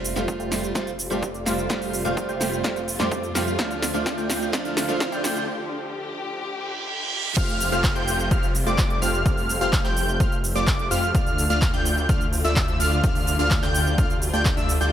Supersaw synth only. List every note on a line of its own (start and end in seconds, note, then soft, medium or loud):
0.00 0.13 A3 medium
0.00 0.13 F4 medium
0.00 0.13 G4 medium
0.00 0.13 C5 medium
0.00 0.13 F5 medium
0.16 0.37 A3 loud
0.16 0.37 F4 medium
0.16 0.37 G4 medium
0.16 0.37 C5 medium
0.16 0.37 F5 loud
0.40 0.72 A3 medium
0.40 0.72 F4 medium
0.40 0.72 G4 medium
0.40 0.72 C5 medium
0.40 0.72 G5 medium
0.75 0.91 A3 medium
0.75 0.91 F4 medium
0.75 0.91 G4 medium
0.75 0.91 C5 medium
0.75 0.91 F5 medium
1.11 1.43 A3 medium
1.11 1.43 F4 medium
1.11 1.43 G4 medium
1.11 1.43 C5 medium
1.11 1.43 D5 loud
1.46 1.67 A3 medium
1.46 1.67 F4 medium
1.46 1.67 G4 medium
1.46 1.67 C5 medium
1.46 1.67 F5 loud
1.70 2.02 A3 medium
1.70 2.02 F4 medium
1.70 2.02 G4 medium
1.70 2.02 C5 medium
1.70 2.02 F5 medium
2.05 2.26 A3 loud
2.05 2.26 F4 medium
2.05 2.26 G4 medium
2.05 2.26 C5 medium
2.05 2.26 F5 loud
2.29 2.61 A3 medium
2.29 2.61 F4 medium
2.29 2.61 G4 medium
2.29 2.61 C5 medium
2.29 2.61 G5 loud
2.64 2.80 A3 medium
2.64 2.80 F4 medium
2.64 2.80 G4 medium
2.64 2.80 C5 medium
2.64 2.80 F5 medium
3.00 3.32 A3 medium
3.00 3.32 F4 medium
3.00 3.32 G4 medium
3.00 3.32 C5 medium
3.00 3.32 D5 loud
3.35 3.56 A3 medium
3.35 3.56 F4 medium
3.35 3.56 G4 medium
3.35 3.56 C5 medium
3.35 3.56 F5 loud
3.59 3.91 A3 medium
3.59 3.91 D4 medium
3.59 3.91 F4 medium
3.59 3.91 D5 medium
3.59 3.91 F5 medium
3.94 4.15 A3 medium
3.94 4.15 D4 medium
3.94 4.15 F4 medium
3.94 4.15 D5 medium
3.94 4.15 F5 medium
4.18 4.50 A3 medium
4.18 4.50 D4 medium
4.18 4.50 F4 medium
4.18 4.50 D5 medium
4.18 4.50 G5 medium
4.53 4.86 A3 medium
4.53 4.86 D4 medium
4.53 4.86 F4 medium
4.53 4.86 D5 medium
4.53 4.86 F5 medium
4.89 5.09 A3 medium
4.89 5.09 D4 medium
4.89 5.09 F4 medium
4.89 5.09 D5 medium
4.89 5.09 F5 loud
5.12 5.45 A3 medium
5.12 5.45 D4 medium
5.12 5.45 F4 medium
5.12 5.45 D5 medium
5.12 5.45 G5 loud
7.37 7.69 A3 medium
7.37 7.69 F4 medium
7.37 7.69 G4 medium
7.37 7.69 C5 medium
7.37 7.69 F5 medium
7.72 7.93 A3 loud
7.72 7.93 F4 medium
7.72 7.93 G4 medium
7.72 7.93 C5 medium
7.72 7.93 F5 loud
7.96 8.28 A3 medium
7.96 8.28 F4 medium
7.96 8.28 G4 medium
7.96 8.28 C5 medium
7.96 8.28 G5 loud
8.31 8.47 A3 medium
8.31 8.47 F4 medium
8.31 8.47 G4 medium
8.31 8.47 C5 medium
8.31 8.47 F5 medium
8.67 8.99 A3 loud
8.67 8.99 F4 medium
8.67 8.99 G4 medium
8.67 8.99 C5 medium
8.67 8.99 D5 loud
9.02 9.23 A3 loud
9.02 9.23 F4 medium
9.02 9.23 G4 medium
9.02 9.23 C5 medium
9.02 9.23 F5 loud
9.26 9.58 A3 medium
9.26 9.58 F4 medium
9.26 9.58 G4 medium
9.26 9.58 C5 medium
9.26 9.58 F5 medium
9.61 9.82 A3 loud
9.61 9.82 F4 medium
9.61 9.82 G4 medium
9.61 9.82 C5 medium
9.61 9.82 F5 loud
9.85 10.17 A3 medium
9.85 10.17 F4 medium
9.85 10.17 G4 medium
9.85 10.17 C5 medium
9.85 10.17 G5 loud
10.20 10.36 A3 medium
10.20 10.36 F4 medium
10.20 10.36 G4 medium
10.20 10.36 C5 medium
10.20 10.36 F5 loud
10.56 10.88 A3 loud
10.56 10.88 F4 medium
10.56 10.88 G4 medium
10.56 10.88 C5 medium
10.56 10.88 D5 loud
10.91 11.12 A3 loud
10.91 11.12 F4 medium
10.91 11.12 G4 medium
10.91 11.12 C5 medium
10.91 11.12 F5 loud
11.15 11.47 A3 medium
11.15 11.47 D4 medium
11.15 11.47 F4 medium
11.15 11.47 D5 medium
11.15 11.47 F5 medium
11.50 11.71 A3 loud
11.50 11.71 D4 medium
11.50 11.71 F4 medium
11.50 11.71 D5 medium
11.50 11.71 F5 loud
11.74 12.06 A3 medium
11.74 12.06 D4 medium
11.74 12.06 F4 medium
11.74 12.06 D5 medium
11.74 12.06 G5 loud
12.09 12.25 A3 medium
12.09 12.25 D4 medium
12.09 12.25 F4 medium
12.09 12.25 D5 medium
12.09 12.25 F5 medium
12.45 12.77 A3 medium
12.45 12.77 D4 medium
12.45 12.77 F4 medium
12.45 12.77 D5 medium
12.45 12.77 E5 loud
12.80 13.01 A3 medium
12.80 13.01 D4 medium
12.80 13.01 F4 medium
12.80 13.01 D5 medium
12.80 13.01 F5 loud
13.04 13.36 A3 medium
13.04 13.36 D4 medium
13.04 13.36 D5 medium
13.04 13.36 F5 medium
13.39 13.60 A3 loud
13.39 13.60 D4 medium
13.39 13.60 F4 medium
13.39 13.60 D5 medium
13.39 13.60 F5 loud
13.63 13.95 A3 medium
13.63 13.95 D4 medium
13.63 13.95 F4 medium
13.63 13.95 D5 medium
13.63 13.95 G5 loud
13.98 14.14 A3 medium
13.98 14.14 D4 medium
13.98 14.14 F4 medium
13.98 14.14 D5 medium
13.98 14.14 F5 medium
14.34 14.54 A3 medium
14.34 14.54 D4 medium
14.34 14.54 F4 medium
14.34 14.54 D5 medium
14.34 14.54 G5 loud
14.57 14.73 A3 medium
14.57 14.73 D4 medium
14.57 14.73 F4 medium
14.57 14.73 D5 medium
14.57 14.73 E5 medium
14.81 14.91 A3 medium
14.81 14.91 D4 medium
14.81 14.91 F4 medium
14.81 14.91 D5 medium
14.81 14.91 G5 medium